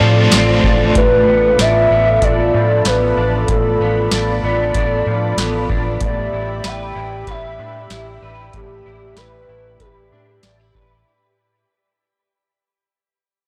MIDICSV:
0, 0, Header, 1, 7, 480
1, 0, Start_track
1, 0, Tempo, 631579
1, 727, Time_signature, 4, 2, 24, 8
1, 10243, End_track
2, 0, Start_track
2, 0, Title_t, "Analog synth pad"
2, 0, Program_c, 0, 89
2, 0, Note_on_c, 0, 65, 80
2, 0, Note_on_c, 0, 69, 76
2, 0, Note_on_c, 0, 74, 76
2, 0, Note_on_c, 0, 84, 91
2, 694, Note_off_c, 0, 84, 0
2, 696, Note_off_c, 0, 69, 0
2, 736, Note_on_c, 0, 69, 77
2, 736, Note_on_c, 0, 83, 77
2, 4536, Note_off_c, 0, 65, 0
2, 4541, Note_off_c, 0, 69, 0
2, 4541, Note_off_c, 0, 83, 0
2, 4566, Note_on_c, 0, 76, 69
2, 4569, Note_on_c, 0, 83, 86
2, 4570, Note_on_c, 0, 67, 77
2, 8375, Note_off_c, 0, 74, 0
2, 8376, Note_off_c, 0, 76, 0
2, 8377, Note_off_c, 0, 83, 0
2, 8378, Note_off_c, 0, 67, 0
2, 10243, End_track
3, 0, Start_track
3, 0, Title_t, "Soft synth lead"
3, 0, Program_c, 1, 80
3, 0, Note_on_c, 1, 74, 98
3, 484, Note_off_c, 1, 74, 0
3, 738, Note_on_c, 1, 71, 102
3, 1217, Note_on_c, 1, 76, 121
3, 1228, Note_off_c, 1, 71, 0
3, 1697, Note_on_c, 1, 74, 96
3, 1709, Note_off_c, 1, 76, 0
3, 2181, Note_on_c, 1, 71, 85
3, 2192, Note_off_c, 1, 74, 0
3, 2534, Note_off_c, 1, 71, 0
3, 2669, Note_on_c, 1, 69, 73
3, 3108, Note_off_c, 1, 69, 0
3, 3381, Note_on_c, 1, 74, 118
3, 4303, Note_off_c, 1, 74, 0
3, 4600, Note_on_c, 1, 74, 86
3, 5074, Note_on_c, 1, 79, 98
3, 5086, Note_off_c, 1, 74, 0
3, 5549, Note_on_c, 1, 76, 86
3, 5561, Note_off_c, 1, 79, 0
3, 6258, Note_off_c, 1, 76, 0
3, 6506, Note_on_c, 1, 67, 85
3, 6973, Note_on_c, 1, 71, 104
3, 6984, Note_off_c, 1, 67, 0
3, 7446, Note_on_c, 1, 67, 78
3, 7457, Note_off_c, 1, 71, 0
3, 8166, Note_off_c, 1, 67, 0
3, 10243, End_track
4, 0, Start_track
4, 0, Title_t, "Overdriven electric guitar"
4, 0, Program_c, 2, 29
4, 0, Note_on_c, 2, 57, 59
4, 0, Note_on_c, 2, 60, 56
4, 0, Note_on_c, 2, 65, 52
4, 0, Note_on_c, 2, 69, 61
4, 732, Note_off_c, 2, 60, 0
4, 1136, Note_off_c, 2, 57, 0
4, 1136, Note_off_c, 2, 65, 0
4, 1136, Note_off_c, 2, 69, 0
4, 10243, End_track
5, 0, Start_track
5, 0, Title_t, "Clean electric guitar"
5, 0, Program_c, 3, 27
5, 0, Note_on_c, 3, 45, 76
5, 0, Note_on_c, 3, 60, 50
5, 0, Note_on_c, 3, 62, 61
5, 8, Note_on_c, 3, 53, 53
5, 239, Note_off_c, 3, 60, 0
5, 248, Note_on_c, 3, 60, 55
5, 485, Note_off_c, 3, 62, 0
5, 488, Note_on_c, 3, 62, 51
5, 718, Note_off_c, 3, 45, 0
5, 727, Note_on_c, 3, 45, 74
5, 775, Note_off_c, 3, 60, 0
5, 969, Note_on_c, 3, 59, 50
5, 991, Note_off_c, 3, 53, 0
5, 1211, Note_off_c, 3, 62, 0
5, 1214, Note_on_c, 3, 62, 60
5, 1449, Note_off_c, 3, 59, 0
5, 1452, Note_on_c, 3, 59, 51
5, 1692, Note_off_c, 3, 62, 0
5, 1695, Note_on_c, 3, 62, 61
5, 1933, Note_on_c, 3, 53, 51
5, 2171, Note_off_c, 3, 59, 0
5, 2175, Note_on_c, 3, 59, 55
5, 2408, Note_off_c, 3, 62, 0
5, 2411, Note_on_c, 3, 62, 58
5, 2643, Note_off_c, 3, 45, 0
5, 2652, Note_on_c, 3, 45, 66
5, 2891, Note_off_c, 3, 59, 0
5, 2894, Note_on_c, 3, 59, 60
5, 3130, Note_off_c, 3, 62, 0
5, 3133, Note_on_c, 3, 62, 54
5, 3372, Note_off_c, 3, 59, 0
5, 3375, Note_on_c, 3, 59, 55
5, 3613, Note_off_c, 3, 62, 0
5, 3616, Note_on_c, 3, 62, 59
5, 3844, Note_off_c, 3, 53, 0
5, 3853, Note_on_c, 3, 53, 52
5, 4086, Note_off_c, 3, 59, 0
5, 4089, Note_on_c, 3, 59, 57
5, 4325, Note_off_c, 3, 62, 0
5, 4328, Note_on_c, 3, 62, 54
5, 4563, Note_off_c, 3, 45, 0
5, 4572, Note_on_c, 3, 45, 67
5, 4618, Note_off_c, 3, 53, 0
5, 4808, Note_off_c, 3, 62, 0
5, 4811, Note_on_c, 3, 64, 53
5, 5048, Note_on_c, 3, 71, 58
5, 5282, Note_off_c, 3, 64, 0
5, 5285, Note_on_c, 3, 64, 52
5, 5526, Note_off_c, 3, 71, 0
5, 5529, Note_on_c, 3, 71, 61
5, 5765, Note_off_c, 3, 59, 0
5, 5768, Note_on_c, 3, 62, 47
5, 6009, Note_off_c, 3, 64, 0
5, 6012, Note_on_c, 3, 64, 60
5, 6249, Note_off_c, 3, 71, 0
5, 6252, Note_on_c, 3, 71, 50
5, 6491, Note_off_c, 3, 45, 0
5, 6494, Note_on_c, 3, 45, 61
5, 6730, Note_off_c, 3, 64, 0
5, 6733, Note_on_c, 3, 64, 57
5, 6968, Note_off_c, 3, 71, 0
5, 6971, Note_on_c, 3, 71, 52
5, 7209, Note_off_c, 3, 64, 0
5, 7212, Note_on_c, 3, 64, 50
5, 7448, Note_off_c, 3, 71, 0
5, 7451, Note_on_c, 3, 71, 56
5, 7690, Note_off_c, 3, 62, 0
5, 7693, Note_on_c, 3, 62, 54
5, 7931, Note_off_c, 3, 64, 0
5, 7934, Note_off_c, 3, 62, 0
5, 7934, Note_on_c, 3, 62, 51
5, 8054, Note_off_c, 3, 62, 0
5, 8054, Note_on_c, 3, 64, 37
5, 8169, Note_off_c, 3, 71, 0
5, 8172, Note_on_c, 3, 71, 45
5, 8458, Note_off_c, 3, 64, 0
5, 8837, Note_off_c, 3, 71, 0
5, 8838, Note_off_c, 3, 45, 0
5, 10243, End_track
6, 0, Start_track
6, 0, Title_t, "Fingered electric bass"
6, 0, Program_c, 4, 33
6, 5, Note_on_c, 4, 45, 99
6, 217, Note_off_c, 4, 45, 0
6, 246, Note_on_c, 4, 33, 79
6, 458, Note_off_c, 4, 33, 0
6, 486, Note_on_c, 4, 33, 81
6, 697, Note_off_c, 4, 33, 0
6, 729, Note_on_c, 4, 33, 90
6, 939, Note_off_c, 4, 33, 0
6, 969, Note_on_c, 4, 33, 72
6, 1179, Note_off_c, 4, 33, 0
6, 1207, Note_on_c, 4, 33, 76
6, 1418, Note_off_c, 4, 33, 0
6, 1449, Note_on_c, 4, 33, 81
6, 1659, Note_off_c, 4, 33, 0
6, 1687, Note_on_c, 4, 33, 90
6, 1898, Note_off_c, 4, 33, 0
6, 1932, Note_on_c, 4, 45, 78
6, 2141, Note_off_c, 4, 45, 0
6, 2170, Note_on_c, 4, 33, 83
6, 2380, Note_off_c, 4, 33, 0
6, 2410, Note_on_c, 4, 33, 84
6, 2619, Note_off_c, 4, 33, 0
6, 2650, Note_on_c, 4, 33, 83
6, 2860, Note_off_c, 4, 33, 0
6, 2892, Note_on_c, 4, 33, 75
6, 3101, Note_off_c, 4, 33, 0
6, 3131, Note_on_c, 4, 33, 91
6, 3340, Note_off_c, 4, 33, 0
6, 3371, Note_on_c, 4, 33, 87
6, 3580, Note_off_c, 4, 33, 0
6, 3609, Note_on_c, 4, 33, 86
6, 3819, Note_off_c, 4, 33, 0
6, 3848, Note_on_c, 4, 45, 76
6, 4059, Note_off_c, 4, 45, 0
6, 4084, Note_on_c, 4, 33, 85
6, 4297, Note_off_c, 4, 33, 0
6, 4330, Note_on_c, 4, 33, 92
6, 4540, Note_off_c, 4, 33, 0
6, 4567, Note_on_c, 4, 33, 97
6, 4778, Note_off_c, 4, 33, 0
6, 4809, Note_on_c, 4, 33, 73
6, 5019, Note_off_c, 4, 33, 0
6, 5050, Note_on_c, 4, 33, 90
6, 5260, Note_off_c, 4, 33, 0
6, 5289, Note_on_c, 4, 33, 75
6, 5499, Note_off_c, 4, 33, 0
6, 5528, Note_on_c, 4, 33, 90
6, 5770, Note_off_c, 4, 33, 0
6, 5770, Note_on_c, 4, 45, 88
6, 5979, Note_off_c, 4, 45, 0
6, 6008, Note_on_c, 4, 33, 86
6, 6218, Note_off_c, 4, 33, 0
6, 6250, Note_on_c, 4, 33, 78
6, 6460, Note_off_c, 4, 33, 0
6, 6490, Note_on_c, 4, 33, 89
6, 6699, Note_off_c, 4, 33, 0
6, 6732, Note_on_c, 4, 33, 64
6, 6941, Note_off_c, 4, 33, 0
6, 6971, Note_on_c, 4, 33, 78
6, 7180, Note_off_c, 4, 33, 0
6, 7212, Note_on_c, 4, 33, 84
6, 7421, Note_off_c, 4, 33, 0
6, 7450, Note_on_c, 4, 33, 74
6, 7692, Note_off_c, 4, 33, 0
6, 7692, Note_on_c, 4, 45, 83
6, 7901, Note_off_c, 4, 45, 0
6, 7931, Note_on_c, 4, 33, 86
6, 8140, Note_off_c, 4, 33, 0
6, 8169, Note_on_c, 4, 33, 77
6, 8379, Note_off_c, 4, 33, 0
6, 10243, End_track
7, 0, Start_track
7, 0, Title_t, "Drums"
7, 240, Note_on_c, 9, 42, 74
7, 242, Note_on_c, 9, 38, 110
7, 316, Note_off_c, 9, 42, 0
7, 318, Note_off_c, 9, 38, 0
7, 485, Note_on_c, 9, 36, 83
7, 561, Note_off_c, 9, 36, 0
7, 724, Note_on_c, 9, 42, 58
7, 726, Note_on_c, 9, 36, 99
7, 800, Note_off_c, 9, 42, 0
7, 802, Note_off_c, 9, 36, 0
7, 1209, Note_on_c, 9, 38, 99
7, 1209, Note_on_c, 9, 42, 66
7, 1285, Note_off_c, 9, 38, 0
7, 1285, Note_off_c, 9, 42, 0
7, 1687, Note_on_c, 9, 36, 75
7, 1687, Note_on_c, 9, 42, 66
7, 1763, Note_off_c, 9, 36, 0
7, 1763, Note_off_c, 9, 42, 0
7, 2166, Note_on_c, 9, 42, 69
7, 2168, Note_on_c, 9, 38, 101
7, 2242, Note_off_c, 9, 42, 0
7, 2244, Note_off_c, 9, 38, 0
7, 2647, Note_on_c, 9, 42, 60
7, 2649, Note_on_c, 9, 36, 96
7, 2723, Note_off_c, 9, 42, 0
7, 2725, Note_off_c, 9, 36, 0
7, 3127, Note_on_c, 9, 38, 93
7, 3128, Note_on_c, 9, 42, 62
7, 3203, Note_off_c, 9, 38, 0
7, 3204, Note_off_c, 9, 42, 0
7, 3606, Note_on_c, 9, 42, 66
7, 3608, Note_on_c, 9, 36, 78
7, 3682, Note_off_c, 9, 42, 0
7, 3684, Note_off_c, 9, 36, 0
7, 4088, Note_on_c, 9, 42, 77
7, 4090, Note_on_c, 9, 38, 120
7, 4164, Note_off_c, 9, 42, 0
7, 4166, Note_off_c, 9, 38, 0
7, 4329, Note_on_c, 9, 36, 83
7, 4405, Note_off_c, 9, 36, 0
7, 4564, Note_on_c, 9, 42, 59
7, 4568, Note_on_c, 9, 36, 90
7, 4640, Note_off_c, 9, 42, 0
7, 4644, Note_off_c, 9, 36, 0
7, 5047, Note_on_c, 9, 38, 94
7, 5047, Note_on_c, 9, 42, 65
7, 5123, Note_off_c, 9, 38, 0
7, 5123, Note_off_c, 9, 42, 0
7, 5526, Note_on_c, 9, 36, 78
7, 5527, Note_on_c, 9, 42, 57
7, 5602, Note_off_c, 9, 36, 0
7, 5603, Note_off_c, 9, 42, 0
7, 6006, Note_on_c, 9, 42, 67
7, 6008, Note_on_c, 9, 38, 117
7, 6082, Note_off_c, 9, 42, 0
7, 6084, Note_off_c, 9, 38, 0
7, 6486, Note_on_c, 9, 42, 55
7, 6488, Note_on_c, 9, 36, 85
7, 6562, Note_off_c, 9, 42, 0
7, 6564, Note_off_c, 9, 36, 0
7, 6966, Note_on_c, 9, 38, 87
7, 6967, Note_on_c, 9, 42, 65
7, 7042, Note_off_c, 9, 38, 0
7, 7043, Note_off_c, 9, 42, 0
7, 7448, Note_on_c, 9, 42, 62
7, 7449, Note_on_c, 9, 36, 71
7, 7524, Note_off_c, 9, 42, 0
7, 7525, Note_off_c, 9, 36, 0
7, 7926, Note_on_c, 9, 42, 73
7, 7928, Note_on_c, 9, 38, 99
7, 8002, Note_off_c, 9, 42, 0
7, 8004, Note_off_c, 9, 38, 0
7, 8169, Note_on_c, 9, 36, 77
7, 8245, Note_off_c, 9, 36, 0
7, 10243, End_track
0, 0, End_of_file